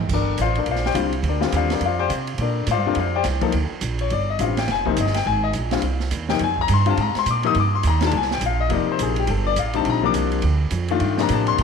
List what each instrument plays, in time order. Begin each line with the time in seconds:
0.09 upright bass G1, kick, crash
0.13 grand piano D4 A4 A#4 D5
0.38 upright bass A1, grand piano C5 F5, hi-hat pedal, ride
0.42 grand piano F4 D5
0.55 grand piano D4 A4 A#4 D5, ride
0.66 upright bass A#1, ride
0.71 grand piano F4 C5 D5 F5
0.76 snare
0.86 grand piano G4 C5 D5 G5, snare
0.94 upright bass C2, grand piano D3 G3 C4 F4, hi-hat pedal, ride
1.12 ride
1.22 upright bass D2, ride
1.28 grand piano D4 A4 A#4 D5
1.41 grand piano D3 G3 C4 F4, snare
1.52 upright bass D#2, grand piano D5, hi-hat pedal, ride
1.56 grand piano F4 C5 F5
1.70 grand piano D4 A4 A#4 D5, snare, ride
1.81 upright bass F2, ride
1.85 grand piano F4 C5 D5 F5
1.99 grand piano G4 C5 D5 G5
2.10 upright bass C3, hi-hat pedal, ride
2.27 ride
2.38 upright bass A#2, grand piano D4 A4 A#4 D5, ride
2.67 upright bass A2, hi-hat pedal, ride
2.71 grand piano F4 C5 D5 F5
2.76 upright bass G2
2.86 upright bass F2, grand piano D3 G3 C4 D4 F4 A4 A#4 D5
2.95 upright bass F2, ride
3.00 grand piano F4 C5 D5 F5
3.16 grand piano G4 C5 D5 G5
3.24 upright bass C2, snare, hi-hat pedal, ride
3.41 grand piano F3 A#3 D#4 A4, kick, ride
3.52 upright bass D2, ride
3.71 muted upright bass stroke
3.81 upright bass A#1, hi-hat pedal, ride
3.99 grand piano C#5, ride
4.10 upright bass G1, grand piano D5, ride
4.30 grand piano D#5
4.39 upright bass A1, grand piano D3 G3 C4 F4 F5, hi-hat pedal, ride
4.57 grand piano G5, snare, ride
4.68 upright bass F1, grand piano G#5, snare, ride
4.85 grand piano C3 F3 A#3 D#4 C5, kick
4.97 upright bass G1, grand piano D#5, hi-hat pedal, ride
5.07 snare
5.14 grand piano G5, snare, ride
5.26 upright bass G#1, grand piano G#5
5.44 grand piano D#5
5.53 upright bass A#1, hi-hat pedal, ride
5.71 grand piano D3 G3 C4 F4, snare, ride
5.82 upright bass C2, ride
6.00 snare
6.11 upright bass D#2, hi-hat pedal, ride
6.29 grand piano C3 F3 A#3 D#4 G5, snare
6.39 upright bass F2, ride
6.44 grand piano G#5
6.57 grand piano A#5, kick
6.68 upright bass G2, hi-hat pedal, ride
6.74 grand piano C6
6.86 grand piano D3 G3 C4 F4, ride
6.90 grand piano A5
6.97 upright bass G#2, grand piano A#5, ride
7.15 grand piano C6, muted upright bass stroke, snare, ride
7.26 upright bass A#2, hi-hat pedal, ride
7.31 grand piano D6
7.43 grand piano C3 F3 A#3 D#4 D#6, ride
7.55 upright bass G2, ride
7.60 grand piano D6
7.75 grand piano C6
7.83 upright bass D#2, hi-hat pedal, ride
7.87 grand piano A#5
8.01 grand piano A#2 D#3 G#3 D4, snare, ride
8.06 grand piano A5
8.11 upright bass C2, ride
8.17 grand piano G#5
8.22 snare
8.31 grand piano G5, snare
8.41 upright bass A#1, hi-hat pedal, ride
8.46 grand piano F5
8.61 grand piano D#5
8.69 upright bass F1, grand piano C3 F3 A#3 D#4 D5, ride
8.87 muted upright bass stroke
8.92 grand piano C5
8.99 upright bass A#1, grand piano G#4, hi-hat pedal, ride
9.16 grand piano G4, ride
9.27 upright bass G1, grand piano A4, ride
9.47 grand piano D5
9.56 upright bass A1, grand piano F5, hi-hat pedal, ride
9.73 grand piano D3 G3 C4 D#4 A5, ride
9.85 upright bass A#1, ride
9.90 grand piano A#5
10.03 grand piano C3 F3 A#3 D4 D6
10.14 upright bass C2, hi-hat pedal, ride
10.32 ride
10.42 upright bass D2, ride
10.71 upright bass F2, hi-hat pedal, ride
10.88 grand piano D#3 A3 D4 F4, ride
11.00 upright bass G2, ride
11.18 grand piano C3 F3 A#3 D4 A#5, snare
11.29 upright bass A2, hi-hat pedal, ride
11.33 grand piano A5
11.47 grand piano C6, ride
11.58 upright bass A#2, ride